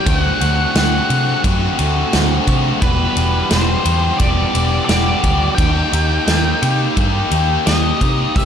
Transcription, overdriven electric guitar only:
0.05 0.74 D3 loud
0.05 0.42 A3 loud
0.05 0.41 C4 loud
0.05 0.39 F#4 loud
0.40 0.75 A3 soft
0.40 0.76 C4 medium
0.40 0.77 F#4 medium
0.75 1.42 D3 medium
0.75 1.11 A3 medium
0.75 1.10 C4 medium
0.75 1.08 F#4 medium
1.09 1.44 A3 medium
1.09 1.45 C4 medium
1.09 1.45 F#4 medium
1.44 2.11 D3 medium
1.44 1.80 A3 medium
1.44 1.79 C4 loud
1.44 1.78 F#4 loud
1.79 2.13 A3 medium
1.79 2.14 C4 medium
1.79 2.15 F#4 medium
2.12 2.80 D3 medium
2.12 2.49 A3 medium
2.12 2.47 C4 medium
2.12 2.46 F#4 medium
2.47 2.81 A3 medium
2.47 2.80 C4 medium
2.47 2.80 F#4 medium
2.81 3.51 E2 loud
2.81 3.51 B2 medium
2.81 3.18 E3 medium
2.81 3.18 G3 medium
2.81 3.16 B3 loud
2.81 3.16 G4 loud
3.16 3.49 E3 medium
3.16 3.51 G3 medium
3.16 3.51 B3 medium
3.16 3.53 G4 medium
3.50 3.87 E3 medium
3.50 3.86 G3 medium
3.50 3.85 B3 medium
3.50 3.84 G4 medium
3.84 4.19 E3 medium
3.84 4.21 G3 medium
3.84 4.21 B3 medium
3.84 4.22 G4 medium
4.19 4.89 E2 medium
4.19 4.89 B2 medium
4.19 4.56 E3 loud
4.19 4.55 G3 loud
4.19 4.54 B3 loud
4.19 4.54 G4 loud
4.54 4.87 E3 medium
4.54 4.89 G3 medium
4.54 4.89 B3 medium
4.54 4.91 G4 medium
4.88 5.25 E3 medium
4.88 5.25 G3 medium
4.88 5.23 B3 medium
4.88 5.23 G4 medium
5.23 5.57 E3 medium
5.23 5.58 G3 medium
5.23 5.57 B3 medium
5.23 5.60 G4 medium
5.57 6.25 D#3 loud
5.57 5.94 A#3 loud
5.57 5.93 D#4 loud
5.57 5.91 G4 loud
5.93 6.26 A#3 soft
5.93 6.28 D#4 medium
5.93 6.29 G4 medium
6.26 6.95 D#3 medium
6.26 6.64 A#3 medium
6.26 6.62 D#4 medium
6.26 6.61 G4 medium
6.62 6.96 A#3 soft
6.62 6.97 D#4 medium
6.62 6.98 G4 medium
6.96 7.64 D#3 medium
6.96 7.33 A#3 medium
6.96 7.32 D#4 medium
6.96 7.30 G4 loud
7.31 7.66 A#3 medium
7.31 7.67 D#4 medium
7.31 7.68 G4 medium
7.66 8.33 D#3 medium
7.66 8.02 A#3 medium
7.66 8.01 D#4 medium
7.66 8.00 G4 medium
8.01 8.35 A#3 medium
8.01 8.34 D#4 medium
8.01 8.34 G4 medium
8.36 8.45 C3 loud
8.36 8.45 G3 medium
8.36 8.45 C4 loud
8.36 8.45 E4 loud
8.36 8.45 G4 loud

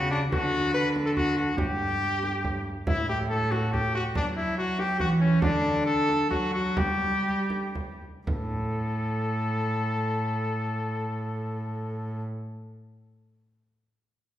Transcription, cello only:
0.00 0.31 C#3 medium
0.31 1.57 D3 medium
1.59 2.66 G2 medium
2.88 4.12 A2 medium
4.16 5.02 F#3 medium
5.00 5.43 E3 medium
5.43 6.29 D3 medium
6.31 6.79 F#3 medium
6.77 8.03 G3 medium
8.27 12.22 A2 medium

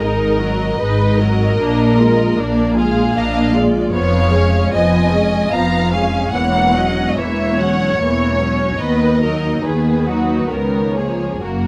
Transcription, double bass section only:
0.00 0.70 G#1 soft
0.80 1.50 G#1 soft
1.60 2.29 A#1 soft
2.38 3.06 A#1 soft
3.16 3.84 A#1 soft
3.93 4.63 F1 soft
4.73 5.42 F1 soft
5.52 6.24 F1 soft
6.33 7.07 E1 soft
7.17 7.89 E1 soft
7.98 8.70 E1 soft
8.79 9.54 D#2 soft
9.64 10.40 D#2 soft
10.50 11.31 C#2 soft
11.42 11.67 F#1 soft

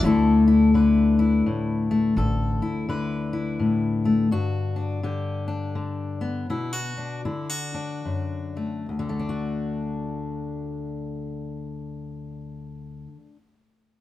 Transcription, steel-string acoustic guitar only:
0.03 2.16 D2 medium
0.03 0.74 D3 medium
0.03 1.90 A3 medium
0.03 0.47 E4 medium
0.03 0.75 A4 medium
0.48 1.19 E4 medium
0.74 2.87 D3 medium
0.74 2.14 B4 medium
1.19 2.14 E4 soft
1.46 2.17 A2 soft
1.91 2.14 A3 soft
2.17 4.30 D2 medium
2.17 2.88 A4 medium
2.62 3.32 E4 medium
2.89 5.02 D3 medium
2.89 4.28 B4 medium
3.33 4.28 E4 soft
3.59 4.30 A2 soft
4.05 4.28 A3 soft
4.31 6.46 G2 medium
4.31 5.04 F#4 medium
4.76 5.47 D4 soft
5.03 5.74 D3 medium
5.03 6.47 G4 soft
5.48 6.53 D4 soft
5.75 6.46 D3 medium
6.21 6.46 B3 soft
6.50 7.26 B2 medium
6.50 6.73 E4 medium
6.73 7.25 F#4 soft
6.97 7.73 D4 soft
7.25 8.98 D3 soft
7.25 7.49 E4 soft
7.49 8.89 F#4 soft
7.74 8.86 D4 soft
8.05 8.86 F#2 soft
8.57 8.86 A3 soft
8.89 13.06 D2 medium
8.99 13.16 D3 soft
9.09 13.26 A3 soft
9.19 13.36 D4 soft
9.29 13.46 F#4 soft

